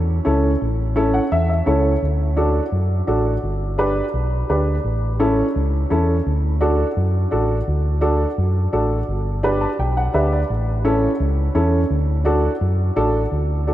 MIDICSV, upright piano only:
0, 0, Header, 1, 2, 480
1, 0, Start_track
1, 0, Key_signature, 2, "major"
1, 0, Tempo, 352941
1, 834, Time_signature, 4, 2, 24, 8
1, 18685, End_track
2, 0, Start_track
2, 0, Title_t, "Upright piano"
2, 0, Program_c, 0, 0
2, 337, Note_on_c, 0, 61, 79
2, 341, Note_on_c, 0, 64, 70
2, 353, Note_on_c, 0, 69, 84
2, 681, Note_off_c, 0, 61, 0
2, 683, Note_off_c, 0, 64, 0
2, 689, Note_off_c, 0, 69, 0
2, 1302, Note_on_c, 0, 61, 84
2, 1310, Note_on_c, 0, 64, 73
2, 1315, Note_on_c, 0, 69, 90
2, 1549, Note_on_c, 0, 78, 71
2, 1643, Note_off_c, 0, 61, 0
2, 1647, Note_off_c, 0, 64, 0
2, 1649, Note_off_c, 0, 69, 0
2, 1774, Note_off_c, 0, 78, 0
2, 1794, Note_on_c, 0, 76, 78
2, 2011, Note_off_c, 0, 76, 0
2, 2031, Note_on_c, 0, 76, 64
2, 2255, Note_off_c, 0, 76, 0
2, 2260, Note_on_c, 0, 61, 74
2, 2265, Note_on_c, 0, 73, 66
2, 2266, Note_on_c, 0, 64, 73
2, 2272, Note_on_c, 0, 69, 90
2, 2602, Note_off_c, 0, 61, 0
2, 2605, Note_off_c, 0, 64, 0
2, 2608, Note_off_c, 0, 69, 0
2, 2714, Note_off_c, 0, 73, 0
2, 3217, Note_on_c, 0, 62, 83
2, 3223, Note_on_c, 0, 66, 73
2, 3227, Note_on_c, 0, 69, 84
2, 3560, Note_off_c, 0, 62, 0
2, 3563, Note_off_c, 0, 66, 0
2, 3565, Note_off_c, 0, 69, 0
2, 4179, Note_on_c, 0, 62, 75
2, 4181, Note_on_c, 0, 66, 73
2, 4188, Note_on_c, 0, 69, 81
2, 4521, Note_off_c, 0, 62, 0
2, 4522, Note_off_c, 0, 66, 0
2, 4526, Note_off_c, 0, 69, 0
2, 5142, Note_on_c, 0, 62, 82
2, 5150, Note_on_c, 0, 67, 78
2, 5151, Note_on_c, 0, 71, 90
2, 5483, Note_off_c, 0, 62, 0
2, 5487, Note_off_c, 0, 67, 0
2, 5487, Note_off_c, 0, 71, 0
2, 6112, Note_on_c, 0, 62, 75
2, 6116, Note_on_c, 0, 67, 69
2, 6118, Note_on_c, 0, 71, 78
2, 6448, Note_off_c, 0, 62, 0
2, 6450, Note_off_c, 0, 67, 0
2, 6451, Note_off_c, 0, 71, 0
2, 7067, Note_on_c, 0, 61, 85
2, 7072, Note_on_c, 0, 64, 80
2, 7074, Note_on_c, 0, 69, 91
2, 7406, Note_off_c, 0, 61, 0
2, 7408, Note_off_c, 0, 64, 0
2, 7409, Note_off_c, 0, 69, 0
2, 8028, Note_on_c, 0, 61, 76
2, 8035, Note_on_c, 0, 64, 70
2, 8041, Note_on_c, 0, 69, 87
2, 8366, Note_off_c, 0, 61, 0
2, 8370, Note_off_c, 0, 64, 0
2, 8373, Note_off_c, 0, 69, 0
2, 8984, Note_on_c, 0, 62, 84
2, 8987, Note_on_c, 0, 66, 80
2, 8994, Note_on_c, 0, 69, 89
2, 9325, Note_off_c, 0, 62, 0
2, 9326, Note_off_c, 0, 66, 0
2, 9330, Note_off_c, 0, 69, 0
2, 9942, Note_on_c, 0, 62, 75
2, 9952, Note_on_c, 0, 66, 69
2, 9953, Note_on_c, 0, 69, 83
2, 10284, Note_off_c, 0, 62, 0
2, 10289, Note_off_c, 0, 66, 0
2, 10290, Note_off_c, 0, 69, 0
2, 10896, Note_on_c, 0, 62, 83
2, 10901, Note_on_c, 0, 66, 73
2, 10904, Note_on_c, 0, 69, 89
2, 11241, Note_off_c, 0, 62, 0
2, 11244, Note_off_c, 0, 66, 0
2, 11245, Note_off_c, 0, 69, 0
2, 11868, Note_on_c, 0, 62, 77
2, 11872, Note_on_c, 0, 66, 69
2, 11875, Note_on_c, 0, 69, 81
2, 12207, Note_off_c, 0, 62, 0
2, 12209, Note_off_c, 0, 66, 0
2, 12210, Note_off_c, 0, 69, 0
2, 12828, Note_on_c, 0, 62, 87
2, 12834, Note_on_c, 0, 67, 78
2, 12842, Note_on_c, 0, 71, 91
2, 13071, Note_on_c, 0, 81, 71
2, 13167, Note_off_c, 0, 62, 0
2, 13170, Note_off_c, 0, 67, 0
2, 13174, Note_off_c, 0, 71, 0
2, 13295, Note_off_c, 0, 81, 0
2, 13322, Note_on_c, 0, 79, 74
2, 13542, Note_off_c, 0, 79, 0
2, 13561, Note_on_c, 0, 78, 71
2, 13781, Note_off_c, 0, 78, 0
2, 13785, Note_on_c, 0, 62, 77
2, 13794, Note_on_c, 0, 67, 71
2, 13794, Note_on_c, 0, 76, 67
2, 13796, Note_on_c, 0, 71, 83
2, 14017, Note_off_c, 0, 76, 0
2, 14042, Note_on_c, 0, 74, 73
2, 14125, Note_off_c, 0, 62, 0
2, 14130, Note_off_c, 0, 67, 0
2, 14131, Note_off_c, 0, 71, 0
2, 14261, Note_off_c, 0, 74, 0
2, 14751, Note_on_c, 0, 61, 86
2, 14755, Note_on_c, 0, 64, 80
2, 14759, Note_on_c, 0, 69, 91
2, 15088, Note_off_c, 0, 61, 0
2, 15090, Note_off_c, 0, 64, 0
2, 15092, Note_off_c, 0, 69, 0
2, 15705, Note_on_c, 0, 61, 80
2, 15710, Note_on_c, 0, 64, 74
2, 15716, Note_on_c, 0, 69, 83
2, 16045, Note_off_c, 0, 61, 0
2, 16048, Note_off_c, 0, 64, 0
2, 16050, Note_off_c, 0, 69, 0
2, 16657, Note_on_c, 0, 62, 87
2, 16665, Note_on_c, 0, 66, 81
2, 16671, Note_on_c, 0, 69, 94
2, 17001, Note_off_c, 0, 62, 0
2, 17005, Note_off_c, 0, 66, 0
2, 17008, Note_off_c, 0, 69, 0
2, 17627, Note_on_c, 0, 62, 77
2, 17629, Note_on_c, 0, 66, 73
2, 17634, Note_on_c, 0, 69, 94
2, 17967, Note_off_c, 0, 62, 0
2, 17968, Note_off_c, 0, 66, 0
2, 17971, Note_off_c, 0, 69, 0
2, 18594, Note_on_c, 0, 62, 72
2, 18598, Note_on_c, 0, 66, 66
2, 18604, Note_on_c, 0, 69, 78
2, 18685, Note_off_c, 0, 62, 0
2, 18685, Note_off_c, 0, 66, 0
2, 18685, Note_off_c, 0, 69, 0
2, 18685, End_track
0, 0, End_of_file